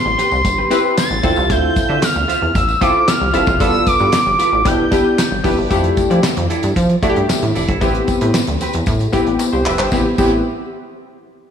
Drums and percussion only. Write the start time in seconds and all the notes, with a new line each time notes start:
0.19 closed hi-hat, tambourine
0.31 tambourine
0.45 kick, closed hi-hat, tambourine
0.71 closed hi-hat, tambourine
0.98 snare, clap, closed hi-hat, tambourine
1.23 kick, closed hi-hat, tambourine
1.36 tambourine
1.50 kick, closed hi-hat, tambourine
1.76 kick, closed hi-hat, tambourine
2.02 snare, clap, closed hi-hat, tambourine
2.29 closed hi-hat, tambourine
2.55 kick, closed hi-hat, tambourine
2.69 tambourine
2.81 kick, closed hi-hat, tambourine
3.08 snare, clap, closed hi-hat, tambourine
3.34 closed hi-hat, tambourine
3.46 kick, tambourine
3.60 kick, closed hi-hat, tambourine
3.86 kick, closed hi-hat, tambourine
4.00 tambourine
4.12 snare, clap, closed hi-hat, tambourine
4.39 closed hi-hat, tambourine
4.65 kick, closed hi-hat, tambourine
4.92 kick, closed hi-hat, tambourine
5.18 snare, clap, closed hi-hat, tambourine
5.44 kick, open hi-hat, tambourine
5.70 kick, closed hi-hat, tambourine
5.84 closed hi-hat
5.97 kick, closed hi-hat, tambourine
6.11 closed hi-hat, tambourine
6.23 snare, clap, tambourine
6.37 closed hi-hat
6.50 closed hi-hat, tambourine
6.63 closed hi-hat, tambourine
6.76 kick, closed hi-hat, tambourine
6.89 closed hi-hat
7.03 kick, closed hi-hat, tambourine
7.16 closed hi-hat
7.30 snare, clap, tambourine
7.42 closed hi-hat
7.55 open hi-hat, tambourine
7.69 kick, closed hi-hat
7.81 kick, closed hi-hat, tambourine
7.95 closed hi-hat
8.08 kick, closed hi-hat, tambourine
8.21 closed hi-hat, tambourine
8.34 snare, clap, tambourine
8.47 closed hi-hat
8.61 closed hi-hat, tambourine
8.73 closed hi-hat, tambourine
8.86 kick, closed hi-hat, tambourine
8.99 closed hi-hat, tambourine
9.13 kick, closed hi-hat, tambourine
9.27 closed hi-hat
9.39 clap, tambourine
9.66 clap, tambourine
9.78 clap, tambourine
9.92 kick, snare, tambourine
10.18 kick, crash, tambourine